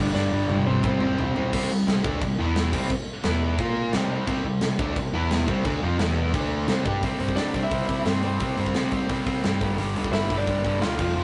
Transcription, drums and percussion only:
0.15 snare
0.49 high tom
0.83 kick, mid tom
1.00 mid tom
1.18 floor tom
1.36 floor tom
1.53 kick, crash
1.88 snare, crash
2.04 kick
2.21 kick, crash
2.56 snare, crash
2.73 kick, crash
2.90 kick, crash
3.24 snare, crash
3.58 kick, crash
3.93 snare, crash
4.27 kick, crash
4.61 snare, crash
4.79 kick
4.96 kick, crash
5.31 snare, crash
5.48 kick
5.65 kick, crash
5.99 snare, crash
6.34 kick, crash
6.68 snare, crash
6.86 kick
7.03 kick, open hi-hat
7.20 open hi-hat
7.28 kick
7.37 snare, open hi-hat
7.54 kick, open hi-hat
7.71 kick, open hi-hat
7.89 kick, open hi-hat
8.06 snare, open hi-hat
8.23 open hi-hat
8.40 kick, open hi-hat
8.57 open hi-hat
8.66 kick
8.74 snare, open hi-hat
8.91 kick, open hi-hat
9.09 kick, open hi-hat
9.26 kick, open hi-hat
9.44 snare, open hi-hat
9.61 kick, open hi-hat
9.78 open hi-hat
9.96 open hi-hat
10.04 kick
10.13 snare, open hi-hat
10.30 kick, open hi-hat
10.47 kick, open hi-hat
10.65 kick, open hi-hat
10.82 snare, open hi-hat
10.99 kick, crash

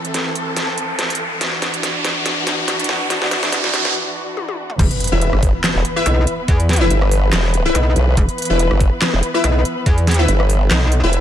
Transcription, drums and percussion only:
0.05 closed hi-hat
0.14 snare, closed hi-hat
0.35 closed hi-hat
0.57 snare, closed hi-hat
0.78 closed hi-hat
0.99 snare, closed hi-hat
1.10 closed hi-hat
1.15 closed hi-hat
1.41 snare, closed hi-hat
1.62 snare, closed hi-hat
1.74 closed hi-hat
1.83 snare, closed hi-hat
2.05 snare, closed hi-hat
2.26 snare, closed hi-hat
2.47 snare, closed hi-hat
2.68 snare, closed hi-hat
2.79 closed hi-hat
2.84 closed hi-hat
2.89 snare
3.10 snare, closed hi-hat
3.22 snare
3.31 snare, closed hi-hat
3.43 snare, closed hi-hat
3.52 snare, closed hi-hat
3.64 snare
3.74 snare, closed hi-hat
3.85 snare
4.37 high tom
4.49 high tom
4.70 mid tom
4.79 kick, closed hi-hat, crash
4.91 closed hi-hat
5.00 closed hi-hat
5.04 closed hi-hat
5.07 closed hi-hat
5.22 closed hi-hat
5.33 cross-stick
5.43 kick, open hi-hat
5.64 snare, clap, closed hi-hat
5.85 closed hi-hat
5.96 cross-stick
6.06 closed hi-hat
6.27 closed hi-hat
6.48 kick, closed hi-hat
6.60 closed hi-hat
6.69 snare, closed hi-hat
6.73 closed hi-hat
6.76 closed hi-hat
6.90 closed hi-hat
7.02 cross-stick
7.12 open hi-hat
7.33 snare, clap, closed hi-hat
7.54 closed hi-hat
7.75 closed hi-hat
7.96 closed hi-hat
8.17 kick, closed hi-hat
8.29 closed hi-hat
8.38 closed hi-hat
8.42 closed hi-hat
8.45 closed hi-hat
8.59 closed hi-hat
8.71 cross-stick
8.80 kick, open hi-hat
9.02 snare, clap, closed hi-hat
9.23 closed hi-hat
9.34 cross-stick
9.44 closed hi-hat
9.65 closed hi-hat
9.86 kick, closed hi-hat
9.98 closed hi-hat
10.07 snare, closed hi-hat
10.11 closed hi-hat
10.14 closed hi-hat
10.28 closed hi-hat
10.40 cross-stick
10.50 open hi-hat
10.71 snare, clap, closed hi-hat
10.92 closed hi-hat
11.13 closed hi-hat

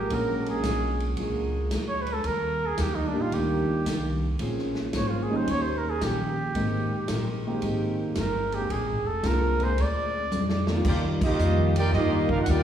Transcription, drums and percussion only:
0.10 kick, ride
0.46 ride
0.63 kick, snare, hi-hat pedal, ride
1.00 ride
1.17 kick, ride
1.71 kick, snare, hi-hat pedal, ride
2.06 ride
2.24 kick, ride
2.78 kick, snare, hi-hat pedal, ride
3.32 kick, ride
3.86 kick, snare, hi-hat pedal, ride
4.39 kick, ride
4.58 snare
4.75 snare
4.93 kick, snare, hi-hat pedal, ride
5.47 kick, ride
6.01 kick, snare, hi-hat pedal, ride
6.54 kick, ride
7.08 kick, snare, hi-hat pedal, ride
7.62 kick, ride
8.15 kick, snare, hi-hat pedal, ride
8.52 ride
8.70 kick, ride
9.23 kick, snare, hi-hat pedal, ride
9.60 ride
9.77 kick, ride
10.31 hi-hat pedal, high tom
10.49 snare
10.67 snare
10.85 kick, crash
11.21 kick, crash
11.39 hi-hat pedal
11.76 ride
11.93 kick, snare
12.29 kick
12.46 kick, hi-hat pedal, ride

